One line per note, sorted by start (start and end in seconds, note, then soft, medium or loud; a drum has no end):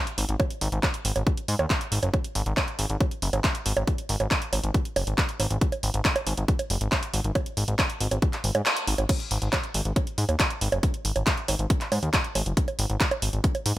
0.07 closed hi-hat medium
0.18 0.25 G#1 loud
0.18 open hi-hat medium
0.29 0.36 G#1 medium
0.29 closed hi-hat medium
0.40 kick loud
0.40 closed hi-hat medium
0.40 high bongo medium
0.50 closed hi-hat medium
0.61 0.68 G#1 medium
0.61 open hi-hat loud
0.72 0.79 G#1 medium
0.72 closed hi-hat medium
0.83 kick loud
0.83 clap loud
0.83 closed hi-hat medium
0.83 high bongo soft
0.94 closed hi-hat medium
1.05 1.12 G#1 medium
1.05 open hi-hat loud
1.16 1.23 G#1 medium
1.16 closed hi-hat medium
1.16 high bongo soft
1.27 kick loud
1.27 closed hi-hat medium
1.37 closed hi-hat medium
1.48 1.55 G#2 medium
1.48 open hi-hat loud
1.59 1.66 D#2 medium
1.59 closed hi-hat medium
1.59 high bongo medium
1.70 kick loud
1.70 clap loud
1.70 closed hi-hat medium
1.81 closed hi-hat medium
1.92 1.99 G#1 loud
1.92 open hi-hat medium
2.03 2.09 F#1 medium
2.03 closed hi-hat medium
2.03 high bongo soft
2.14 kick loud
2.14 closed hi-hat medium
2.14 high bongo soft
2.24 closed hi-hat medium
2.35 2.42 G#1 medium
2.35 open hi-hat loud
2.46 2.53 G#1 medium
2.46 closed hi-hat medium
2.57 kick loud
2.57 clap loud
2.57 closed hi-hat medium
2.57 high bongo medium
2.68 closed hi-hat medium
2.79 2.86 G#1 medium
2.79 open hi-hat medium
2.90 2.96 G#1 medium
2.90 closed hi-hat medium
3.00 kick loud
3.00 closed hi-hat medium
3.00 high bongo soft
3.11 closed hi-hat medium
3.22 3.29 F#1 medium
3.22 open hi-hat loud
3.33 3.40 G#1 medium
3.33 closed hi-hat medium
3.33 high bongo soft
3.44 kick loud
3.44 clap loud
3.44 closed hi-hat medium
3.55 closed hi-hat medium
3.66 3.73 G#1 medium
3.66 open hi-hat medium
3.77 3.83 G#1 medium
3.77 closed hi-hat medium
3.77 high bongo medium
3.87 kick loud
3.87 closed hi-hat medium
3.98 closed hi-hat medium
4.09 4.16 G#1 medium
4.09 open hi-hat loud
4.20 4.27 G#1 medium
4.20 closed hi-hat medium
4.20 high bongo soft
4.31 kick loud
4.31 clap loud
4.31 closed hi-hat medium
4.42 closed hi-hat medium
4.53 4.59 G#1 medium
4.53 open hi-hat medium
4.53 high bongo soft
4.64 4.70 G#1 medium
4.64 closed hi-hat medium
4.74 kick loud
4.74 closed hi-hat medium
4.85 closed hi-hat medium
4.96 5.03 F#1 medium
4.96 open hi-hat loud
4.96 high bongo medium
5.07 5.14 G#1 medium
5.07 closed hi-hat medium
5.18 kick loud
5.18 clap loud
5.18 closed hi-hat medium
5.29 closed hi-hat medium
5.40 5.46 G#1 loud
5.40 open hi-hat medium
5.40 high bongo soft
5.51 5.57 G#1 medium
5.51 closed hi-hat medium
5.61 kick loud
5.61 closed hi-hat medium
5.72 closed hi-hat medium
5.72 high bongo soft
5.83 5.90 G#1 medium
5.83 open hi-hat loud
5.94 6.01 G#1 medium
5.94 closed hi-hat medium
6.05 kick loud
6.05 clap loud
6.05 closed hi-hat medium
6.16 closed hi-hat medium
6.16 high bongo medium
6.27 6.33 G#1 medium
6.27 open hi-hat medium
6.37 6.44 G#1 medium
6.37 closed hi-hat medium
6.48 kick loud
6.48 closed hi-hat medium
6.59 closed hi-hat medium
6.59 high bongo soft
6.70 6.77 F#1 medium
6.70 open hi-hat loud
6.81 6.88 G#1 medium
6.81 closed hi-hat medium
6.92 kick loud
6.92 clap loud
6.92 closed hi-hat medium
6.92 high bongo soft
7.03 closed hi-hat medium
7.14 7.20 G#1 medium
7.14 open hi-hat medium
7.24 7.31 G#1 medium
7.24 closed hi-hat medium
7.35 kick loud
7.35 closed hi-hat medium
7.35 high bongo medium
7.46 closed hi-hat medium
7.57 7.64 G#1 medium
7.57 open hi-hat loud
7.68 7.75 G#1 medium
7.68 closed hi-hat medium
7.79 kick loud
7.79 clap loud
7.79 closed hi-hat medium
7.79 high bongo soft
7.90 closed hi-hat medium
8.00 8.07 G#1 medium
8.00 open hi-hat medium
8.11 8.18 G#1 medium
8.11 closed hi-hat medium
8.11 high bongo soft
8.22 kick loud
8.22 closed hi-hat medium
8.33 clap soft
8.33 closed hi-hat medium
8.44 8.51 G#1 medium
8.44 open hi-hat loud
8.55 8.62 G#2 medium
8.55 closed hi-hat medium
8.55 high bongo medium
8.66 clap loud
8.66 closed hi-hat medium
8.77 closed hi-hat medium
8.87 8.94 G#1 loud
8.87 open hi-hat medium
8.98 9.05 G#1 medium
8.98 closed hi-hat medium
8.98 high bongo soft
9.09 kick loud
9.09 closed hi-hat loud
9.09 crash loud
9.09 high bongo soft
9.20 closed hi-hat medium
9.31 9.38 G#1 loud
9.31 open hi-hat loud
9.42 9.49 G#1 medium
9.42 closed hi-hat medium
9.53 kick loud
9.53 clap loud
9.53 closed hi-hat loud
9.53 high bongo medium
9.64 closed hi-hat medium
9.74 9.81 G#1 loud
9.74 open hi-hat medium
9.85 9.92 G#1 medium
9.85 closed hi-hat medium
9.96 kick loud
9.96 closed hi-hat medium
9.96 high bongo soft
10.07 closed hi-hat medium
10.18 10.25 G#2 medium
10.18 open hi-hat loud
10.29 10.36 D#2 medium
10.29 closed hi-hat medium
10.29 high bongo soft
10.40 kick loud
10.40 clap loud
10.40 closed hi-hat loud
10.50 closed hi-hat medium
10.61 10.68 G#1 loud
10.61 open hi-hat medium
10.72 10.79 F#1 medium
10.72 closed hi-hat medium
10.72 high bongo medium
10.83 kick loud
10.83 closed hi-hat medium
10.94 closed hi-hat medium
11.05 11.12 G#1 medium
11.05 open hi-hat loud
11.16 11.23 G#1 medium
11.16 closed hi-hat medium
11.16 high bongo soft
11.27 kick loud
11.27 clap loud
11.27 closed hi-hat medium
11.37 closed hi-hat medium
11.48 11.55 G#1 loud
11.48 open hi-hat loud
11.48 high bongo soft
11.59 11.66 G#1 medium
11.59 closed hi-hat medium
11.70 kick loud
11.70 closed hi-hat medium
11.81 clap soft
11.81 closed hi-hat medium
11.92 11.99 G#2 loud
11.92 open hi-hat loud
11.92 high bongo medium
12.03 12.09 D#2 medium
12.03 closed hi-hat medium
12.14 kick loud
12.14 clap loud
12.14 closed hi-hat loud
12.24 closed hi-hat medium
12.35 12.42 G#1 loud
12.35 open hi-hat loud
12.35 high bongo soft
12.46 12.53 F#1 medium
12.46 closed hi-hat medium
12.57 kick loud
12.57 closed hi-hat loud
12.68 closed hi-hat soft
12.68 high bongo soft
12.79 12.86 G#1 loud
12.79 open hi-hat loud
12.90 12.96 G#1 medium
12.90 closed hi-hat medium
13.00 kick loud
13.00 clap loud
13.00 closed hi-hat medium
13.11 closed hi-hat medium
13.11 high bongo medium
13.22 13.29 G#1 medium
13.22 open hi-hat loud
13.33 13.40 G#1 medium
13.33 closed hi-hat soft
13.44 kick loud
13.44 closed hi-hat medium
13.55 closed hi-hat medium
13.55 high bongo soft
13.66 13.73 G#2 medium
13.66 open hi-hat loud